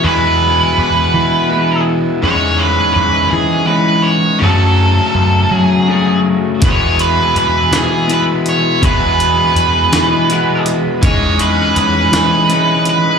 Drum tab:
HH |------|------|------|xxxxxx|
SD |------|------|------|---o--|
BD |------|------|------|o-----|

HH |xxxxxx|xxxxxx|
SD |---o--|---o--|
BD |o-----|o-----|